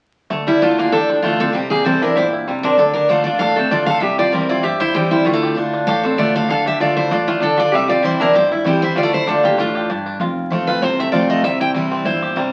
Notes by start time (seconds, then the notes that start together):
0.30 D2 D3 A3
0.47 G3 E4
0.61 D3 A3 D4 F4
0.78 A#3 D4 G#4
0.92 A1 A2 D4 G4 A4
1.09 F3 D4
1.22 D3 A3 D4 F4
1.40 C4 D4 A4
1.52 C2 C3 G3 C4 G4
1.70 A#3 G4 G#4
1.84 E3 G3 C4 E4 A4
2.02 C4 D4 E4 A#4
2.16 G1 A#2 E4 G4 C5
2.33 E4
2.48 C3 G3
2.63 C4 D4 A#4
2.77 D2 D3 D4 A4
2.94 D4 A#4
3.09 D3 A3 D4 F4 C5
3.24 D4 F4 D5
3.39 E2 A2 D4 A4 F5
3.56 A3 C4 A4
3.70 D2 D3 A3 D4 F4 D5
3.86 D4 A4 F5
4.00 C2 C3 G3 G4 E5
4.18 F4 G4 D5
4.32 E3 G3 C4 E4 A#4
4.49 E4 F4 D5
4.63 G1 G2 G4 E5
4.80 E4 C5
4.93 E3 G3 C4 E4 G4
5.11 G3 C4 E4
5.25 D2 D3 G3 A3 F4
5.33 A3
5.43 G4
5.55 D3 A3 D4 F4
5.74 D4
5.87 A1 A2 G4 A4 F5
6.03 C4 D4 A4
6.17 D3 A3 D4 F4 D5
6.35 D4 A4 F5
6.48 D2 D3 A4 F5
6.66 D4 G4 E5
6.80 D3 A3 D4 F4 D5
6.97 D4 E4 C5
7.11 A1 A2 D4 F4 D5
7.27 A3 F4
7.40 D3 D4 A4
7.57 D4 F4 D5
7.72 C2 C3 G3 G4 E5
7.88 F4 G4 D5
8.02 E3 G3 C4 E4 C5
8.20 C4 D4 E4 A#4
8.33 G1 G2 E4 G4 C5
8.51 G3 E4
8.64 E3 G3 C4 E4 G4
8.82 C4 E4 C5
8.96 D2 D3 G3 F4 D5
9.03 A3
9.13 E4 C5
9.26 D3 A3 D4 F4 G4 A4
9.43 A#3 D4 G4
9.58 A1 A2 A3 D4 F4
9.75 G4
9.90 G2 D4
10.06 D4
10.20 F1 F2 F4
10.50 F3 A3 C4 F4
10.67 F4 B4
10.81 C2 C3 C4 C5
10.99 A3 E5
11.12 F3 A3 C4 F4 D5
11.30 A3 D#5
11.43 C2 C3 G3 E5
11.60 E4 G5
11.74 E3 G3 C4 E4
11.92 C4
12.05 G1 A#2 E4 C5
12.22 G4
12.36 C3 G3